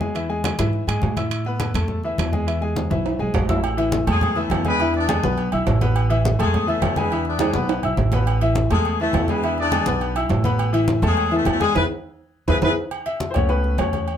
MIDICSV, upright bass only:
0, 0, Header, 1, 2, 480
1, 0, Start_track
1, 0, Key_signature, 3, "major"
1, 0, Tempo, 290135
1, 253, Time_signature, 4, 2, 24, 8
1, 23448, End_track
2, 0, Start_track
2, 0, Title_t, "Upright bass"
2, 0, Program_c, 0, 32
2, 0, Note_on_c, 0, 40, 86
2, 877, Note_off_c, 0, 40, 0
2, 976, Note_on_c, 0, 44, 86
2, 1422, Note_off_c, 0, 44, 0
2, 1441, Note_on_c, 0, 44, 73
2, 1671, Note_off_c, 0, 44, 0
2, 1698, Note_on_c, 0, 45, 91
2, 2807, Note_off_c, 0, 45, 0
2, 2886, Note_on_c, 0, 40, 91
2, 3561, Note_off_c, 0, 40, 0
2, 3613, Note_on_c, 0, 40, 102
2, 4725, Note_off_c, 0, 40, 0
2, 4806, Note_on_c, 0, 35, 88
2, 5258, Note_off_c, 0, 35, 0
2, 5281, Note_on_c, 0, 35, 80
2, 5512, Note_off_c, 0, 35, 0
2, 5547, Note_on_c, 0, 33, 96
2, 6651, Note_off_c, 0, 33, 0
2, 6739, Note_on_c, 0, 40, 97
2, 7407, Note_off_c, 0, 40, 0
2, 7462, Note_on_c, 0, 40, 108
2, 8567, Note_off_c, 0, 40, 0
2, 8663, Note_on_c, 0, 35, 95
2, 9105, Note_off_c, 0, 35, 0
2, 9142, Note_on_c, 0, 35, 81
2, 9361, Note_off_c, 0, 35, 0
2, 9388, Note_on_c, 0, 33, 106
2, 10490, Note_off_c, 0, 33, 0
2, 10576, Note_on_c, 0, 40, 96
2, 11243, Note_off_c, 0, 40, 0
2, 11284, Note_on_c, 0, 40, 98
2, 12397, Note_off_c, 0, 40, 0
2, 12475, Note_on_c, 0, 35, 87
2, 12928, Note_off_c, 0, 35, 0
2, 12962, Note_on_c, 0, 35, 75
2, 13189, Note_off_c, 0, 35, 0
2, 13201, Note_on_c, 0, 33, 101
2, 14314, Note_off_c, 0, 33, 0
2, 14407, Note_on_c, 0, 40, 90
2, 15077, Note_off_c, 0, 40, 0
2, 15122, Note_on_c, 0, 40, 100
2, 16235, Note_off_c, 0, 40, 0
2, 16323, Note_on_c, 0, 35, 88
2, 16995, Note_off_c, 0, 35, 0
2, 17040, Note_on_c, 0, 33, 100
2, 18154, Note_off_c, 0, 33, 0
2, 18237, Note_on_c, 0, 40, 97
2, 18911, Note_off_c, 0, 40, 0
2, 18960, Note_on_c, 0, 40, 101
2, 19410, Note_off_c, 0, 40, 0
2, 19457, Note_on_c, 0, 40, 101
2, 19631, Note_off_c, 0, 40, 0
2, 20653, Note_on_c, 0, 40, 105
2, 20829, Note_off_c, 0, 40, 0
2, 20878, Note_on_c, 0, 40, 105
2, 21061, Note_off_c, 0, 40, 0
2, 22097, Note_on_c, 0, 37, 86
2, 22762, Note_off_c, 0, 37, 0
2, 22810, Note_on_c, 0, 40, 102
2, 23448, Note_off_c, 0, 40, 0
2, 23448, End_track
0, 0, End_of_file